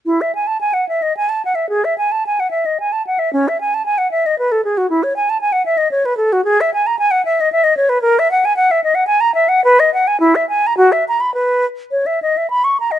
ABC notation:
X:1
M:3/4
L:1/16
Q:1/4=112
K:E
V:1 name="Flute"
E e g a g f e d g a f e | G e g a g f e d g a f e | C e g a g f e d B A G F | E c g a g f e d c B A F |
[K:B] G e g a g f e d e d c B | A e f g f e d f g a e f | B d f g E e g a F e a b | B4 c e d e b c' a d |]